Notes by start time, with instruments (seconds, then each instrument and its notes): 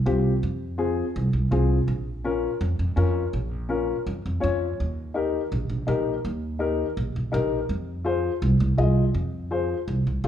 0.06 upright bass C2, upright piano C4 F4 G4
0.43 upright bass F2
0.78 upright piano C4 F4 G#4
1.16 upright bass C2
1.33 upright bass C2
1.51 upright bass C2, upright piano C4 F4 G#4
1.88 upright bass A#1
2.24 upright piano C#4 F4 A#4
2.61 upright bass F2
2.79 upright bass F2
2.96 upright bass F2, upright piano C#4 F4 A#4
3.33 upright bass A#1
3.69 upright piano C#4 F4 A#4
4.07 upright bass F2
4.26 upright bass F2
4.40 upright bass F2, upright piano C#4 F4 C#5
4.80 upright bass D#2
5.14 upright piano D#4 G4 A#4
5.52 upright bass A#1
5.69 upright bass A#1
5.87 upright bass A#1, upright piano D#4 G4 A#4
6.25 upright bass D#2
6.59 upright piano D#4 G4 A#4
6.97 upright bass A#1
7.16 upright bass A#1
7.32 upright bass A#1, upright piano D#4 G4 A#4
7.69 upright bass F2
8.05 upright piano F4 G#4 C5
8.42 upright bass C2
8.60 upright bass C2
8.77 upright bass C2, upright piano F4 G#4 D#5
9.14 upright bass F2
9.51 upright piano F4 G#4 C5
9.88 upright bass C2
10.07 upright bass C2
10.24 upright bass C2, upright piano F4 G#4 C5